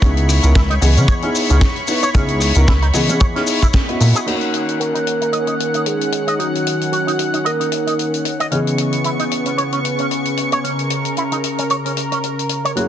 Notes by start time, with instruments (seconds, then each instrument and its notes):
Already playing: analog synth pad C#5 B5 C#6
0.02 analog synth bass C#2, grand piano B3 D#4 E4 G#4, clean electric guitar C#4, kick, closed hi-hat, shaker
0.17 closed hi-hat
0.29 cross-stick, open hi-hat, shaker
0.43 analog synth bass C#2, grand piano B3 D#4 E4 A#4, closed hi-hat, shaker
0.55 analog synth bass C#2, clean electric guitar E4, kick, snare, closed hi-hat, shaker
0.70 clean electric guitar D#4, cross-stick, closed hi-hat
0.81 analog synth bass C#2, grand piano E3 B3 G#4 D#5, open hi-hat, shaker
0.96 analog synth bass C#3, clean electric guitar C#4, closed hi-hat, shaker
1.08 clean electric guitar C#5, kick, closed hi-hat, shaker
1.22 grand piano B3 D#4 E4 G#4, clean electric guitar C#4, closed hi-hat
1.35 open hi-hat, shaker
1.49 analog synth bass C#2, grand piano B3 D#4 E4 G#4, clean electric guitar C#4, closed hi-hat, shaker
1.61 kick, snare, closed hi-hat, shaker
1.76 closed hi-hat
1.87 grand piano B3 D#4 E4 B4, open hi-hat, shaker
2.03 clean electric guitar C#5, closed hi-hat, shaker
2.14 analog synth bass C#2, grand piano B3 D#4 E4 G#4, clean electric guitar C#4, kick, closed hi-hat, shaker
2.28 closed hi-hat
2.40 cross-stick, open hi-hat, shaker
2.55 analog synth bass C#2, grand piano B3 D#4 E4 A#4, closed hi-hat, shaker
2.67 analog synth bass C#2, clean electric guitar E4, kick, snare, closed hi-hat, shaker
2.82 clean electric guitar D#4, cross-stick, closed hi-hat
2.93 analog synth bass C#2, grand piano E3 B3 G#4 D#5, open hi-hat, shaker
3.09 analog synth bass C#3, clean electric guitar C#4, closed hi-hat, shaker
3.20 clean electric guitar C#5, kick, closed hi-hat, shaker
3.35 grand piano B3 D#4 E4 G#4, clean electric guitar C#4, snare, closed hi-hat
3.47 open hi-hat, shaker
3.62 clean electric guitar E4, kick, closed hi-hat, shaker
3.73 kick, snare, closed hi-hat, shaker
3.88 grand piano B3 E4 F#4 D#5, closed hi-hat
4.00 analog synth bass A#2, open hi-hat, shaker
4.15 clean electric guitar G#4, closed hi-hat, shaker
4.26 analog synth pad D#3 C#4 F#5, grand piano A#3 C#4 D#4 F#4, clean electric guitar D#4, closed hi-hat, crash
4.41 closed hi-hat
4.54 closed hi-hat
4.69 closed hi-hat
4.80 clean electric guitar F#4, soft synth lead A#4, closed hi-hat
4.94 clean electric guitar D#4, closed hi-hat
5.07 closed hi-hat
5.21 clean electric guitar D#4, closed hi-hat
5.33 clean electric guitar D#5, closed hi-hat
5.47 clean electric guitar D#4, closed hi-hat
5.60 closed hi-hat
5.74 clean electric guitar D#4, closed hi-hat
5.86 soft synth lead G#4, closed hi-hat
6.01 closed hi-hat
6.12 closed hi-hat
6.27 clean electric guitar D#5, closed hi-hat
6.39 clean electric guitar D#4, soft synth lead F#4, closed hi-hat
6.55 closed hi-hat
6.67 closed hi-hat
6.81 closed hi-hat
6.92 clean electric guitar F#4, closed hi-hat
7.07 clean electric guitar D#4, closed hi-hat
7.19 closed hi-hat
7.34 clean electric guitar D#4, closed hi-hat
7.45 soft synth lead A#4, clean electric guitar D#5, closed hi-hat
7.60 clean electric guitar D#4, closed hi-hat
7.72 closed hi-hat
7.87 clean electric guitar D#4, closed hi-hat
7.99 closed hi-hat
8.14 closed hi-hat
8.25 closed hi-hat
8.40 clean electric guitar D#5, closed hi-hat
8.51 grand piano C#3 E3 B3 G#4 D#5, analog synth pad C#3 B3 C#6, clean electric guitar C#4, closed hi-hat
8.67 closed hi-hat
8.78 closed hi-hat
8.92 closed hi-hat
9.04 clean electric guitar E4, closed hi-hat
9.19 clean electric guitar D#4, closed hi-hat
9.31 closed hi-hat
9.46 clean electric guitar C#4, closed hi-hat
9.58 clean electric guitar C#5, closed hi-hat
9.72 clean electric guitar C#4, closed hi-hat
9.85 closed hi-hat
9.99 clean electric guitar C#4, closed hi-hat
10.11 closed hi-hat
10.25 closed hi-hat
10.37 closed hi-hat
10.52 clean electric guitar C#5, closed hi-hat
10.64 clean electric guitar C#4, analog synth pad A#4, closed hi-hat
10.79 closed hi-hat
10.90 closed hi-hat
11.05 closed hi-hat
11.17 clean electric guitar E4, closed hi-hat
11.32 clean electric guitar D#4, closed hi-hat
11.44 closed hi-hat
11.58 clean electric guitar C#4, closed hi-hat
11.70 clean electric guitar C#5, closed hi-hat
11.85 clean electric guitar C#4, closed hi-hat
11.97 closed hi-hat
12.12 clean electric guitar C#4, closed hi-hat
12.24 closed hi-hat
12.39 closed hi-hat
12.49 closed hi-hat
12.65 clean electric guitar C#5, closed hi-hat
12.76 grand piano F#2 A#3 C#4 E4 G#4, analog synth pad F#3 E4 A#4, clean electric guitar F#4, closed hi-hat